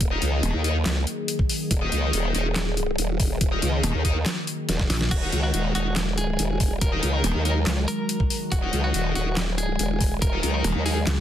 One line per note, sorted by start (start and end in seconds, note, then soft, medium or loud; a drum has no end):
0.00 0.20 D#1 medium
0.00 11.20 D#3 medium
0.00 11.20 F#3 medium
0.00 5.07 A#3 medium
0.00 5.09 G#4 medium
0.00 kick loud
0.00 closed hi-hat medium
0.11 0.62 D#4 medium
0.11 0.62 A#4 medium
0.11 0.62 D#5 medium
0.22 0.41 C#2 loud
0.22 closed hi-hat medium
0.43 0.52 D#1 loud
0.43 closed hi-hat medium
0.54 0.84 D#2 loud
0.64 0.76 D#4 medium
0.64 0.76 A#4 medium
0.64 0.76 D#5 loud
0.64 closed hi-hat medium
0.86 1.05 C#2 loud
0.86 snare loud
0.86 clap medium
0.86 closed hi-hat medium
1.07 closed hi-hat medium
1.28 closed hi-hat medium
1.39 kick loud
1.49 open hi-hat loud
1.71 1.90 D#1 medium
1.71 kick loud
1.71 closed hi-hat medium
1.81 2.32 D#4 medium
1.81 2.32 A#4 medium
1.81 2.32 D#5 medium
1.92 2.12 C#2 loud
1.92 closed hi-hat medium
2.13 2.33 D#1 loud
2.13 closed hi-hat medium
2.34 2.97 D#1 loud
2.34 2.46 D#4 medium
2.34 2.46 A#4 medium
2.34 2.46 D#5 loud
2.34 closed hi-hat medium
2.56 snare loud
2.56 clap medium
2.56 closed hi-hat medium
2.77 closed hi-hat medium
2.98 3.39 D#1 loud
2.98 closed hi-hat medium
3.20 kick loud
3.20 open hi-hat loud
3.41 3.61 D#1 medium
3.41 kick loud
3.41 closed hi-hat medium
3.52 4.02 D#4 medium
3.52 4.02 A#4 medium
3.52 4.02 D#5 medium
3.62 3.82 C#2 loud
3.62 closed hi-hat medium
3.84 3.93 D#1 loud
3.84 closed hi-hat medium
3.94 4.24 D#2 loud
4.05 4.16 D#4 medium
4.05 4.16 A#4 medium
4.05 4.16 D#5 loud
4.05 kick medium
4.05 closed hi-hat medium
4.26 snare loud
4.26 clap medium
4.26 closed hi-hat medium
4.47 closed hi-hat medium
4.69 4.88 D#1 loud
4.69 snare medium
4.69 closed hi-hat medium
4.80 kick loud
4.80 snare medium
4.90 5.10 A#1 loud
4.90 snare medium
4.90 open hi-hat loud
5.01 snare medium
5.11 5.31 D#1 loud
5.11 11.20 G#3 medium
5.11 5.40 F#4 medium
5.11 11.20 F#4 medium
5.11 kick loud
5.11 closed hi-hat medium
5.11 crash medium
5.22 5.73 D#4 medium
5.22 5.73 A#4 medium
5.22 5.73 D#5 medium
5.32 5.52 C#2 loud
5.32 closed hi-hat medium
5.43 5.72 F#4 medium
5.54 5.73 D#1 loud
5.54 closed hi-hat medium
5.75 6.37 D#1 loud
5.75 5.87 D#4 medium
5.75 5.94 F#4 medium
5.75 5.87 A#4 medium
5.75 5.87 D#5 loud
5.75 closed hi-hat medium
5.96 snare loud
5.96 clap loud
5.96 closed hi-hat medium
6.18 6.73 G#4 medium
6.18 closed hi-hat medium
6.39 6.80 D#1 medium
6.39 closed hi-hat medium
6.60 kick loud
6.60 open hi-hat medium
6.81 7.01 D#1 loud
6.81 7.10 A#4 loud
6.81 kick loud
6.81 closed hi-hat medium
6.92 7.43 D#4 medium
6.92 7.43 A#4 medium
6.92 7.43 D#5 medium
7.03 7.22 C#2 loud
7.03 closed hi-hat medium
7.14 7.42 A#4 loud
7.24 7.33 D#1 loud
7.24 closed hi-hat medium
7.35 7.65 D#2 medium
7.45 7.57 D#4 medium
7.45 7.64 A#4 medium
7.45 7.57 A#4 medium
7.45 7.57 D#5 loud
7.45 closed hi-hat medium
7.67 7.86 C#2 loud
7.67 snare loud
7.67 clap loud
7.67 closed hi-hat medium
7.88 8.43 A#4 medium
7.88 closed hi-hat medium
8.09 closed hi-hat medium
8.20 kick loud
8.30 open hi-hat medium
8.52 8.71 D#1 medium
8.52 8.80 F#4 loud
8.52 kick loud
8.52 closed hi-hat medium
8.62 9.13 D#4 medium
8.62 9.13 A#4 medium
8.62 9.13 D#5 medium
8.73 8.93 C#2 loud
8.73 closed hi-hat medium
8.84 9.12 F#4 loud
8.94 9.14 D#1 loud
8.94 closed hi-hat medium
9.15 9.78 D#1 loud
9.15 9.27 D#4 medium
9.15 9.35 F#4 medium
9.15 9.27 A#4 medium
9.15 9.27 D#5 loud
9.15 closed hi-hat soft
9.37 snare loud
9.37 clap medium
9.37 closed hi-hat medium
9.58 10.14 G#4 medium
9.58 closed hi-hat medium
9.79 10.20 D#1 medium
9.79 closed hi-hat medium
10.01 kick loud
10.01 open hi-hat medium
10.22 10.41 D#1 loud
10.22 10.51 A#4 loud
10.22 kick loud
10.22 closed hi-hat medium
10.33 10.83 D#4 medium
10.33 10.83 A#4 medium
10.33 10.83 D#5 medium
10.43 10.63 C#2 loud
10.43 closed hi-hat medium
10.54 10.82 A#4 loud
10.64 10.74 D#1 loud
10.64 closed hi-hat medium
10.75 11.05 D#2 loud
10.85 10.97 D#4 medium
10.85 11.05 G#4 medium
10.85 10.97 A#4 medium
10.85 10.97 D#5 loud
10.85 open hi-hat medium
11.07 11.20 C#2 loud
11.07 snare loud
11.07 clap medium
11.07 closed hi-hat medium